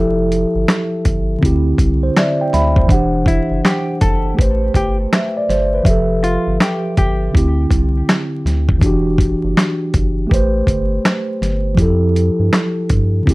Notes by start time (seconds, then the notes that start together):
Already playing: F1 F3 E4 G4 E5
0.00 A4
0.32 closed hi-hat
0.55 G1
0.68 snare, clap, closed hi-hat
1.05 G1, kick, closed hi-hat
1.39 D3 C4, kick
1.43 D2 E4 G4, closed hi-hat
1.78 C2, kick, closed hi-hat
2.03 C5
2.17 D5 E5, snare, clap, closed hi-hat
2.41 G5
2.53 D2 E5 B5, snare, closed hi-hat
2.76 C5, kick
2.86 E1 E3 D4, kick
2.90 G4 F#5, closed hi-hat
3.26 E4, kick, closed hi-hat
3.51 F#1
3.65 G4, snare, clap, closed hi-hat
4.01 F#1 A4, kick, closed hi-hat
4.34 A3 G4
4.39 A1 B4 C5, kick, closed hi-hat
4.74 G1 G4, kick, closed hi-hat
5.13 E5, snare, clap, closed hi-hat
5.37 D5
5.49 G1 C5, snare, closed hi-hat
5.74 B4
5.83 F1 F3 E5, kick, closed hi-hat
5.88 G4 A4
6.24 F4, closed hi-hat
6.47 G1
6.60 G4, snare, clap, closed hi-hat
6.97 G1 G4, kick, closed hi-hat
7.31 D3 C4, kick
7.35 D2 E4 G4, closed hi-hat
7.71 C2, kick, closed hi-hat
8.09 snare, clap, closed hi-hat
8.45 D2, snare, closed hi-hat
8.69 kick
8.79 E1 E3 D4, kick, closed hi-hat
8.84 F#4 G4
9.18 kick, closed hi-hat
9.44 F#1
9.57 snare, clap, closed hi-hat
9.94 F#1, kick, closed hi-hat
10.27 A3 G4
10.31 A1 B4 C5, kick, closed hi-hat
10.67 G1, kick, closed hi-hat
11.05 snare, clap, closed hi-hat
11.42 G1, snare, closed hi-hat
11.75 F2 F3 E4, kick, closed hi-hat
11.79 G4 A4
12.16 closed hi-hat
12.39 G2
12.53 snare, clap, closed hi-hat
12.89 G2, kick, closed hi-hat
13.23 D3 C4
13.27 D2 E4 G4, kick, closed hi-hat